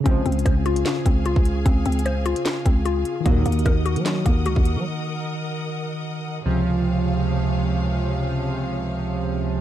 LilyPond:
<<
  \new Staff \with { instrumentName = "String section" } { \time 4/4 \key des \major \tempo 4 = 150 <aes' f'' aes''>1~ | <aes' f'' aes''>1 | <bes' ees'' ges'' ees'''>1~ | <bes' ees'' ges'' ees'''>1 |
<c aes' des'' f''>1~ | <c aes' des'' f''>1 | }
  \new Staff \with { instrumentName = "Tine electric piano" } { \time 4/4 \key des \major <des des' f' c''>1~ | <des des' f' c''>1 | <ees ees' ges' bes'>1~ | <ees ees' ges' bes'>1 |
r1 | r1 | }
  \new Staff \with { instrumentName = "Synth pluck" } { \time 4/4 \key des \major c'8 c'8 c''8 f'4 c'8 f'4 | c'8 c'8 c''8 f'4 c'8 f'4 | bes8 bes8 bes'8 ges'4 bes8 ges'4~ | ges'2 r2 |
r1 | r1 | }
  \new Staff \with { instrumentName = "Analog polysynth" } { \clef bass \time 4/4 \key des \major <des, c f>8 r2. r8 | r1 | <ees, bes, ges>8 r2. r8 | r1 |
<des, c f>1~ | <des, c f>1 | }
  \new Staff \with { instrumentName = "808-style bass" } { \clef bass \time 4/4 \key des \major des,8 des,8 des,4 r8 des,8. des,8. | des,8 des,4~ des,16 r8. des,4 r8 | ees,8 ees,8 ees,8. ges8. ees,8 des,16 ees,8 ges16 | r1 |
r1 | r1 | }
  \new DrumStaff \with { instrumentName = "Drums" } \drummode { \time 4/4 \tuplet 3/2 { <hh bd>16 r16 r16 hh16 hh16 hh16 } <hh bd ss>8 hh16 hh16 <hc hh sn>8 <hh bd>8 hh16 bd16 hh8 | \tuplet 3/2 { <hh bd>16 r16 r16 <hh hho>16 hh16 hh16 } <hh ss>8 hh16 hh16 <hc hh sn>8 <hh bd>8 hh8 hh8 | \tuplet 3/2 { <hh bd>16 r16 r16 hh16 hh16 hh16 } <hh bd ss>8 hh16 hh16 <hc hh sn>8 <hh bd>8 hh16 bd16 hh8 | r4 r4 r4 r4 |
r4 r4 r4 r4 | r4 r4 r4 r4 | }
>>